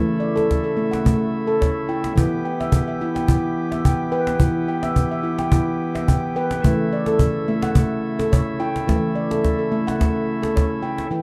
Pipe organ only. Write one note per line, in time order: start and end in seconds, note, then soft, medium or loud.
0.00 2.12 C#3 medium
0.00 2.12 A3 medium
0.00 2.12 E4 medium
2.16 6.60 E3 medium
2.16 6.60 B3 soft
2.16 6.60 G4 medium
6.62 11.06 C#3 soft
6.62 11.06 A3 soft
6.62 11.06 E4 medium